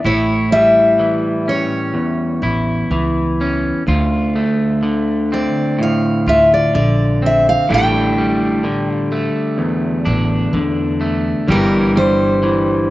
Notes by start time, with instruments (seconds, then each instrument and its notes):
0.04 upright bass A1, clean electric guitar A2 E4, steel-string acoustic guitar C#5
0.52 clean electric guitar G3, steel-string acoustic guitar E5
0.99 clean electric guitar E3
1.48 clean electric guitar C#4, steel-string acoustic guitar C#5
1.94 clean electric guitar E2
2.42 upright bass A1, clean electric guitar E4
2.91 upright bass C#2, clean electric guitar E3
3.41 clean electric guitar C#4
3.87 clean electric guitar D2 F4, upright bass D2
4.35 clean electric guitar A3
4.83 clean electric guitar D3
5.32 clean electric guitar C4, steel-string acoustic guitar D5
5.79 clean electric guitar A2, steel-string acoustic guitar F5
6.26 upright bass D2, clean electric guitar F4, steel-string acoustic guitar E5
6.54 steel-string acoustic guitar D5
6.75 upright bass A#1, clean electric guitar D3, steel-string acoustic guitar D5
7.22 clean electric guitar C4, steel-string acoustic guitar E5
7.49 steel-string acoustic guitar F5
7.69 upright bass A1, clean electric guitar A2 D3 G3 A3 D4
7.74 steel-string acoustic guitar G5
8.18 clean electric guitar G3
8.64 clean electric guitar D3
8.94 steel-string acoustic guitar F5
9.12 clean electric guitar A3
9.58 clean electric guitar E2
10.05 upright bass A1, clean electric guitar D4
10.53 upright bass E2, clean electric guitar D3
11.01 clean electric guitar A3
11.48 upright bass G1, clean electric guitar G2 E3 G3 D4 G4
11.52 steel-string acoustic guitar A#4
11.96 clean electric guitar G3, steel-string acoustic guitar C5
12.43 clean electric guitar E3